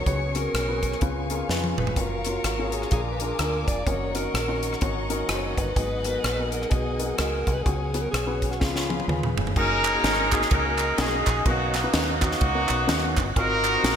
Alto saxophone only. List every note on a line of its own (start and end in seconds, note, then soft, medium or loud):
0.08 0.37 C#5 medium
0.36 1.30 A#4 medium
1.78 1.98 B4 medium
1.98 2.09 B4 medium
2.09 2.75 A#4 medium
2.74 2.92 G#4 medium
2.93 3.02 G#4 medium
3.11 3.22 B4 medium
3.20 3.69 A#4 medium
3.68 3.88 D5 medium
3.87 4.17 C#5 medium
4.15 5.10 A#4 medium
5.57 6.53 B4 loud
6.51 6.71 A#4 loud
6.70 7.07 G#4 medium
7.07 7.18 G#4 medium
7.17 7.55 A#4 medium
7.53 7.64 B4 medium
7.63 8.03 G#4 medium
8.01 8.11 A#4 medium
8.12 8.52 G#4 medium
8.50 8.62 F#4 medium
8.60 9.37 F4 medium